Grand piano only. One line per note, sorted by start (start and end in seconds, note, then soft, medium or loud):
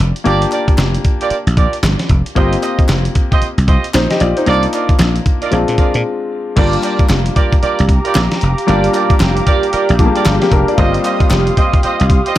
0.00 0.21 A#3 medium
0.00 0.22 D4 medium
0.00 0.22 F4 medium
0.00 0.22 G4 medium
0.24 2.31 A#3 medium
0.24 2.32 D4 medium
0.24 2.32 F4 medium
0.24 2.33 G4 medium
2.35 4.42 A#3 medium
2.35 4.43 C4 medium
2.35 3.91 F4 medium
2.35 3.92 G4 medium
3.94 4.10 D#4 medium
3.94 4.10 C5 medium
4.10 4.20 G4 medium
4.10 4.20 D#5 medium
4.21 4.36 F4 medium
4.21 4.36 D5 medium
4.37 4.46 D#4 medium
4.37 4.62 C5 medium
4.46 5.50 A#3 medium
4.46 5.50 D4 medium
4.46 5.50 D#4 medium
4.46 5.51 F4 medium
5.51 6.55 G#3 medium
5.51 6.55 C4 medium
5.51 6.55 D4 medium
5.51 6.56 F4 medium
6.56 8.63 G3 medium
6.56 8.63 A#3 medium
6.56 8.64 D4 medium
6.56 8.64 F4 medium
8.67 9.96 G3 medium
8.67 9.97 A#3 medium
8.67 9.97 D4 medium
8.67 9.97 F4 medium
9.99 10.76 G3 medium
9.99 10.07 G#3 soft
9.99 10.26 D4 medium
9.99 10.26 F4 medium
10.06 10.29 A#3 medium
10.42 10.52 A#3 medium
10.42 10.51 G4 medium
10.52 10.68 D4 medium
10.52 10.67 A#4 medium
10.68 10.78 F4 medium
10.68 10.93 D5 medium
10.78 12.38 G3 medium
10.78 12.38 A#3 medium
10.78 12.38 C4 medium
10.78 12.38 F4 medium